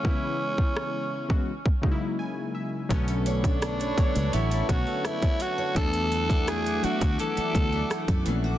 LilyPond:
<<
  \new Staff \with { instrumentName = "Analog synth pad" } { \time 4/4 \key b \dorian \tempo 4 = 84 r1 | <b' cis'' a'' cis'''>1 | <a e'' fis'' d'''>1 | }
  \new Staff \with { instrumentName = "Steel-string acoustic guitar" } { \time 4/4 \key b \dorian r1 | b16 a'16 cis''16 a'16 d'16 cis''16 a'16 cis''16 b16 a'16 cis''16 a'16 d'16 cis''16 a'16 cis''16 | r16 d'16 fis'16 d'16 a16 fis'16 d'16 fis'16 e16 d'16 fis'16 d'16 a16 fis'16 d'16 fis'16 | }
  \new Staff \with { instrumentName = "Tenor saxophone" } { \time 4/4 \key b \dorian cis'2~ cis'8. r4 r16 | r8 d'4. e'8 fis'8 e'8 fis'8 | a'4 gis'8 fis'8 a'4. r8 | }
  \new Staff \with { instrumentName = "Synth keys" } { \time 4/4 \key b \dorian << { r2. gis''8 e''8 | r1 | r1 | } \\ { <cis e gis b e'>4 r8. <cis e gis b fis'>16 r8 <cis fis gis ais dis' e'>4 r8 | <d fis a b cis'>8 r16 <d fis a b d'>8 r16 <d fis a b cis''>8 r8 <d fis a b cis'>4 r8 | <e fis a b d'>4 r8 <e fis a b d'>8 r8 <e fis a b d'>8 r8 <e fis a b cis'>16 r16 | } >> }
  \new Staff \with { instrumentName = "Fingered electric bass" } { \clef bass \time 4/4 \key b \dorian r1 | b,,4. r16 cis,16 a,,8 b,,16 r4 r16 | e,4. r16 d,16 r8 d,8 r16 fis,16 ais,,8 | }
  \new DrumStaff \with { instrumentName = "Drums" } \drummode { \time 4/4 bd8. bd16 ss8. bd16 r16 bd16 bd8 r4 | <hh bd>16 hh16 hh16 <hh bd>16 <hh ss>16 hh16 <hh bd>16 hh16 hh16 hh16 <hh bd>8 <hh ss>16 <hh bd>16 hh8 | <hh bd>16 hh16 hh16 <hh bd>16 <hh ss>16 hh16 hh16 <hh bd>16 hh16 hh16 <hh bd>8 <hh ss>16 <hh bd>16 hh8 | }
>>